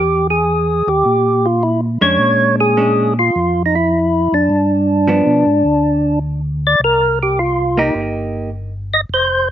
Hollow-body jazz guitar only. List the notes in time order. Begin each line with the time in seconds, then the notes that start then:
2.01 G#3 C#4 D4
2.77 G#3 C#4 D4
5.07 F3 B3 D4
7.77 A#3 D#4 G4